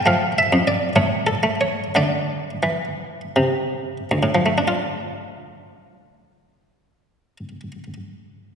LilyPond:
<<
  \new Staff \with { instrumentName = "Harpsichord" } { \time 6/8 \key d \minor \tempo 4. = 54 f''8 e''8 d''8 cis''8 a'8 cis''8 | d''4. r4. | <d, a, f a d' f'>2.~ | <d, a, f a d' f'>2. | }
  \new Staff \with { instrumentName = "Harpsichord" } { \clef bass \time 6/8 \key d \minor << { a4. a4. | a2. | r2. | r2. | } \\ { f8. f,8. a,8. a8. | d4 e4 c4 | r2. | r2. | } >> }
>>